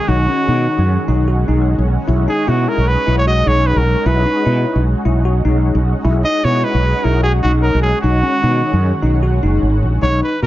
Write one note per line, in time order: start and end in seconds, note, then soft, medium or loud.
0.00 2.03 D#3 medium
0.00 2.04 G#3 medium
0.00 2.04 C#4 medium
0.00 2.04 F#4 medium
0.08 0.26 B1 medium
0.08 0.25 D#4 medium
0.08 1.28 F#4 medium
0.28 0.45 C#4 medium
0.48 0.66 B2 medium
0.48 0.81 D#4 medium
0.78 0.96 F#2 medium
1.08 1.44 B1 medium
1.08 1.24 D#4 medium
1.28 1.44 F#4 medium
1.48 1.75 B1 medium
1.48 1.80 D#4 medium
1.78 1.96 B1 medium
2.07 2.26 B1 medium
2.07 6.01 G#3 medium
2.07 6.01 C#4 medium
2.07 6.01 D#4 medium
2.07 2.24 E4 medium
2.07 6.01 F#4 medium
2.28 2.44 D#4 medium
2.28 2.50 G#4 medium
2.47 2.66 B2 medium
2.47 2.80 E4 medium
2.47 2.70 F#4 medium
2.68 2.89 A#4 medium
2.78 2.95 B1 medium
2.88 3.17 B4 medium
3.07 3.43 B1 medium
3.07 3.23 E4 medium
3.18 3.27 C#5 medium
3.27 3.43 F#4 medium
3.27 3.49 D#5 loud
3.46 3.73 B1 medium
3.46 3.79 D#4 medium
3.46 3.68 C#5 medium
3.67 3.79 B4 medium
3.76 3.94 B1 medium
3.76 4.08 A#4 medium
4.06 4.24 B1 loud
4.06 4.23 E4 medium
4.06 4.86 B4 medium
4.26 4.42 D#4 medium
4.45 4.64 B2 medium
4.45 4.78 E4 medium
4.75 4.93 B1 medium
5.05 5.41 B1 medium
5.05 5.22 E4 medium
5.25 5.42 F#4 medium
5.45 5.72 B1 medium
5.45 5.78 D#4 medium
5.75 5.93 B1 medium
6.04 6.23 B1 loud
6.04 7.99 G#3 medium
6.04 8.00 C#4 medium
6.04 7.99 D#4 medium
6.04 6.21 E4 medium
6.04 8.00 F#4 medium
6.24 6.41 D#4 medium
6.24 6.46 D#5 loud
6.44 6.62 B2 medium
6.44 6.77 E4 medium
6.44 6.66 C#5 medium
6.64 7.05 B4 medium
6.74 6.92 B1 medium
7.04 7.40 B1 medium
7.04 7.20 E4 medium
7.04 7.23 A#4 medium
7.23 7.40 F#4 medium
7.23 7.32 G#4 medium
7.42 7.71 B1 medium
7.42 7.76 D#4 medium
7.42 7.52 F#4 medium
7.62 7.81 A#4 medium
7.75 7.92 B1 medium
7.82 8.01 G#4 medium
8.01 8.21 B1 medium
8.01 9.98 D#3 medium
8.01 9.99 G#3 medium
8.01 9.99 C#4 medium
8.01 8.20 D#4 medium
8.01 9.18 F#4 medium
8.01 9.99 F#4 medium
8.23 8.39 C#4 medium
8.43 8.61 B2 medium
8.43 8.75 D#4 medium
8.73 8.91 F#2 medium
9.03 9.38 B1 medium
9.03 9.19 D#4 medium
9.23 9.39 F#4 medium
9.43 9.61 F#1 medium
9.43 9.75 D#4 medium
9.62 9.80 G#1 medium
9.83 10.01 A#1 medium
10.02 10.20 B1 medium
10.02 10.35 D#4 medium
10.02 10.21 C#5 loud
10.23 10.41 B4 medium
10.42 10.47 B2 medium
10.42 10.47 F#4 medium
10.42 10.47 A#4 medium